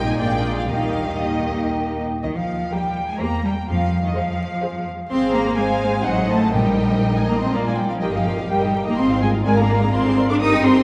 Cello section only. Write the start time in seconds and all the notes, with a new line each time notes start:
Already playing: A#2
0.19 A#2
0.69 D#3
2.24 D#3
2.36 F3
2.72 G3
3.09 G#3
3.20 A#3
3.44 G3
3.68 F3
4.05 D#3
4.15 F3
5.11 C4
5.34 A#3
5.58 G#3
6.06 F#3
6.30 A3
6.55 G3
7.17 G#3
7.29 A#3
7.43 C4
7.54 A#3
7.67 G#3
7.78 G3
7.92 F3
8.03 D#3
8.14 F3
8.51 G3
8.88 A#3
8.99 C4
9.23 G#3
9.47 G#3
9.58 A#3
9.94 C4
10.31 D4
10.41 D#4
10.64 C4